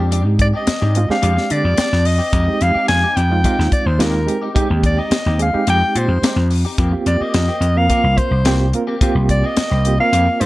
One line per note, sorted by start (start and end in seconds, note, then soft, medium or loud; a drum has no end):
0.00 0.25 F2 medium
0.00 0.73 G#3 medium
0.00 0.10 C4 soft
0.00 0.73 C4 medium
0.00 0.11 D4 soft
0.00 0.74 D4 medium
0.00 0.11 G4 medium
0.00 0.74 G4 medium
0.11 0.26 G#3 medium
0.11 0.25 C4 medium
0.11 0.25 D4 medium
0.11 0.24 G4 medium
0.11 closed hi-hat medium
0.25 0.52 G#2 medium
0.25 muted clean electric guitar stroke soft
0.39 0.47 D5 medium
0.39 muted clean electric guitar stroke soft
0.39 kick medium
0.39 closed hi-hat medium
0.54 0.67 C4 soft
0.54 0.67 D4 soft
0.54 0.67 G4 soft
0.54 1.07 D#5 medium
0.67 muted slap bass stroke soft
0.67 muted clean electric guitar stroke soft
0.67 snare loud
0.67 closed hi-hat medium
0.81 1.08 G#2 medium
0.81 0.98 C4 soft
0.81 0.98 D4 soft
0.81 0.98 G4 soft
0.95 1.06 G#3 medium
0.95 1.06 C4 medium
0.95 1.06 D4 medium
0.95 1.06 F4 medium
0.95 closed hi-hat medium
1.08 1.87 G#3 medium
1.08 1.87 C4 medium
1.08 1.87 D4 medium
1.08 1.88 G4 medium
1.08 1.54 F5 medium
1.08 muted clean electric guitar stroke soft
1.08 muted slap bass stroke soft
1.08 snare soft
1.22 1.36 F2 medium
1.22 1.37 G#3 medium
1.22 1.37 C4 medium
1.22 1.36 D4 medium
1.22 1.36 G4 medium
1.22 closed hi-hat medium
1.37 muted clean electric guitar stroke soft
1.37 snare soft
1.50 1.64 D3 medium
1.50 2.08 D5 medium
1.50 muted clean electric guitar stroke soft
1.50 closed hi-hat medium
1.64 1.77 F2 medium
1.77 1.92 G#3 medium
1.77 1.91 C4 medium
1.77 1.91 D4 medium
1.77 1.91 G4 medium
1.77 muted slap bass stroke soft
1.77 snare loud
1.77 closed hi-hat medium
1.92 2.19 F2 medium
1.92 muted clean electric guitar stroke soft
1.92 snare soft
2.05 2.64 D#5 medium
2.05 muted clean electric guitar stroke soft
2.05 open hi-hat medium
2.18 2.32 C4 soft
2.18 2.33 D4 soft
2.18 2.32 G4 medium
2.32 2.47 F2 medium
2.32 2.48 G#3 medium
2.32 2.46 C4 medium
2.32 2.46 D#4 medium
2.32 2.46 G4 medium
2.32 kick loud
2.32 closed hi-hat medium
2.47 3.06 G#3 medium
2.47 3.06 C4 medium
2.47 3.07 D#4 medium
2.47 3.07 G4 medium
2.47 muted clean electric guitar stroke soft
2.60 2.75 F2 medium
2.60 2.88 F5 loud
2.60 muted clean electric guitar stroke soft
2.60 closed hi-hat medium
2.74 2.87 C4 soft
2.74 2.87 D#4 soft
2.74 2.88 G4 soft
2.74 muted slap bass stroke soft
2.88 3.03 F2 medium
2.88 3.18 G#5 loud
2.88 muted clean electric guitar stroke soft
2.88 snare loud
2.88 closed hi-hat medium
3.03 3.20 C4 soft
3.03 3.20 D#4 medium
3.03 3.20 G4 soft
3.16 3.43 F2 medium
3.16 3.72 G5 medium
3.16 closed hi-hat medium
3.30 3.40 G#3 medium
3.30 3.40 C4 medium
3.30 3.41 D#4 medium
3.30 3.41 F4 medium
3.30 muted clean electric guitar stroke soft
3.44 3.59 G#3 medium
3.44 3.84 G#3 medium
3.44 3.59 C4 medium
3.44 3.84 C4 medium
3.44 3.84 D#4 medium
3.44 3.58 D#4 medium
3.44 3.84 F4 medium
3.44 3.58 G4 medium
3.44 kick medium
3.44 closed hi-hat medium
3.59 3.72 D#2 medium
3.59 muted clean electric guitar stroke soft
3.59 snare soft
3.72 3.88 D5 medium
3.72 muted clean electric guitar stroke soft
3.72 muted slap bass stroke soft
3.72 kick medium
3.72 closed hi-hat medium
3.86 3.99 D#2 medium
3.86 4.03 C5 medium
3.99 4.26 D#2 medium
3.99 4.19 G#3 medium
3.99 4.15 G#3 medium
3.99 4.19 C4 medium
3.99 4.14 C4 medium
3.99 4.20 D#4 medium
3.99 4.14 D#4 medium
3.99 4.20 F4 medium
3.99 4.14 G4 medium
3.99 4.43 A#4 medium
3.99 snare loud
3.99 closed hi-hat medium
4.15 muted clean electric guitar stroke soft
4.26 4.47 G#3 medium
4.26 4.47 C4 medium
4.26 4.47 D#4 medium
4.26 4.47 G4 medium
4.26 muted clean electric guitar stroke soft
4.26 closed hi-hat medium
4.42 4.54 C4 soft
4.42 4.55 D#4 soft
4.42 4.55 G4 medium
4.55 5.14 G#3 medium
4.55 4.70 G#3 medium
4.55 5.14 C4 medium
4.55 4.70 C4 medium
4.55 5.14 D#4 medium
4.55 4.69 D#4 medium
4.55 5.14 G4 medium
4.55 4.69 G4 medium
4.55 kick loud
4.55 closed hi-hat medium
4.70 4.97 D#2 medium
4.70 muted clean electric guitar stroke soft
4.83 5.01 D5 medium
4.83 muted clean electric guitar stroke soft
4.83 kick medium
4.83 closed hi-hat medium
4.97 5.10 C4 soft
4.97 5.10 D#4 soft
4.97 5.11 G4 soft
4.97 5.40 D#5 medium
5.11 muted slap bass stroke soft
5.11 muted clean electric guitar stroke soft
5.11 snare loud
5.11 closed hi-hat medium
5.26 5.52 D#2 medium
5.26 5.43 C4 soft
5.26 5.43 D#4 soft
5.26 5.43 G4 soft
5.38 5.49 G#3 medium
5.38 5.49 C4 medium
5.38 5.50 D#4 medium
5.38 5.50 G#4 medium
5.38 closed hi-hat medium
5.42 5.67 F5 medium
5.53 6.31 G#3 medium
5.53 6.32 C4 medium
5.53 6.31 D#4 medium
5.53 6.32 G4 medium
5.53 muted clean electric guitar stroke soft
5.53 muted slap bass stroke soft
5.67 5.81 F2 medium
5.67 5.82 G#3 medium
5.67 5.82 C4 medium
5.67 5.82 D#4 medium
5.67 5.81 G4 medium
5.67 6.00 G5 loud
5.67 closed hi-hat medium
5.82 muted clean electric guitar stroke soft
5.95 6.08 A#2 medium
5.95 6.53 C5 medium
5.95 muted clean electric guitar stroke soft
5.95 closed hi-hat medium
6.08 6.22 F2 medium
6.22 6.37 G#3 medium
6.22 6.37 C4 medium
6.22 6.36 D#4 medium
6.22 6.36 G4 medium
6.22 muted slap bass stroke soft
6.22 snare loud
6.22 closed hi-hat medium
6.36 6.63 F2 medium
6.36 muted clean electric guitar stroke soft
6.50 muted clean electric guitar stroke soft
6.50 open hi-hat medium
6.65 6.77 C4 soft
6.65 6.78 D#4 soft
6.65 6.78 G4 medium
6.78 6.92 F2 medium
6.78 6.93 F3 medium
6.78 6.93 A#3 medium
6.78 6.92 C4 medium
6.78 6.92 G4 medium
6.78 kick loud
6.78 closed hi-hat medium
6.92 7.51 A#3 medium
6.92 7.51 C4 medium
6.92 7.51 F4 medium
6.92 7.51 G4 medium
6.92 muted clean electric guitar stroke soft
7.06 7.20 F2 medium
7.06 7.23 D5 medium
7.06 muted clean electric guitar stroke soft
7.06 closed hi-hat medium
7.21 7.33 A#3 soft
7.21 7.33 C4 soft
7.21 7.33 G4 soft
7.21 7.79 D#5 medium
7.21 muted slap bass stroke soft
7.34 7.48 F2 medium
7.34 muted clean electric guitar stroke soft
7.34 snare loud
7.34 closed hi-hat medium
7.48 7.66 A#3 soft
7.48 7.65 C4 soft
7.48 7.65 G4 medium
7.61 7.88 F2 medium
7.61 closed hi-hat medium
7.76 7.86 A#3 medium
7.76 7.86 C4 medium
7.76 7.86 F4 medium
7.76 7.86 A#4 medium
7.76 8.19 F5 loud
7.76 muted clean electric guitar stroke soft
7.89 8.04 F3 medium
7.89 8.03 A#3 medium
7.89 8.29 A#3 medium
7.89 8.29 C4 medium
7.89 8.02 C4 medium
7.89 8.29 F4 medium
7.89 8.02 G4 medium
7.89 8.29 A#4 medium
7.89 kick medium
7.89 closed hi-hat medium
8.03 8.17 C2 medium
8.03 muted clean electric guitar stroke soft
8.17 8.74 C5 medium
8.17 muted clean electric guitar stroke soft
8.17 muted slap bass stroke soft
8.17 kick medium
8.17 closed hi-hat medium
8.31 8.44 C2 medium
8.44 8.71 C2 loud
8.44 8.60 F3 medium
8.44 8.59 A#3 medium
8.44 8.66 A#3 medium
8.44 8.59 C4 medium
8.44 8.66 C4 medium
8.44 8.66 F4 medium
8.44 8.59 G4 medium
8.44 8.66 G4 medium
8.44 snare loud
8.44 closed hi-hat medium
8.60 muted clean electric guitar stroke soft
8.73 8.94 A#3 medium
8.73 8.94 C4 medium
8.73 8.94 F4 medium
8.73 8.95 A#4 medium
8.73 muted clean electric guitar stroke soft
8.73 closed hi-hat medium
8.87 9.00 A#3 medium
8.87 9.01 C4 medium
8.87 9.01 G4 medium
9.01 9.16 F3 medium
9.01 9.16 A#3 medium
9.01 9.60 A#3 medium
9.01 9.15 C4 medium
9.01 9.60 C4 medium
9.01 9.61 F4 medium
9.01 9.15 G4 medium
9.01 9.61 G4 medium
9.01 kick loud
9.01 closed hi-hat medium
9.15 9.42 C2 medium
9.15 muted clean electric guitar stroke soft
9.29 9.48 D5 medium
9.29 muted clean electric guitar stroke soft
9.29 kick medium
9.29 closed hi-hat medium
9.43 9.56 A#3 soft
9.43 9.57 C4 soft
9.43 9.57 G4 soft
9.43 10.00 D#5 medium
9.57 muted clean electric guitar stroke soft
9.57 muted slap bass stroke soft
9.57 snare loud
9.57 closed hi-hat medium
9.70 9.98 C2 medium
9.70 9.88 A#3 soft
9.70 9.88 C4 soft
9.70 9.87 G4 soft
9.85 9.95 A#3 medium
9.85 9.95 C4 medium
9.85 9.96 F4 medium
9.85 9.96 G4 medium
9.85 closed hi-hat medium
9.99 10.46 A#3 medium
9.99 10.46 C4 medium
9.99 10.46 F4 medium
9.99 10.46 A#4 medium
9.99 10.43 F5 loud
9.99 muted clean electric guitar stroke soft
10.13 10.26 F2 loud
10.13 10.27 F3 medium
10.13 10.27 A#3 medium
10.13 10.27 C4 medium
10.13 10.27 G4 medium
10.13 closed hi-hat medium
10.28 muted clean electric guitar stroke soft
10.41 10.46 G2 medium
10.41 10.46 C5 medium
10.41 muted clean electric guitar stroke soft
10.41 closed hi-hat medium